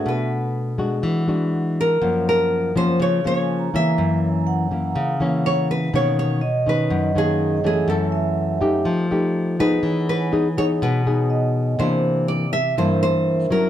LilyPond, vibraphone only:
\new Staff \with { instrumentName = "Vibraphone" } { \time 4/4 \key fis \dorian \tempo 4 = 123 e''8 r2. r8 | r2 r8 eis''16 gis''16 ais''4~ | ais''4 fis''2~ fis''8. r16 | r4 dis''2 cis''16 fis''16 gis''8~ |
gis''8 e''4. r2 | cis''16 fis''16 gis''2~ gis''8 dis''4 | r4. e''8 bes'2 | }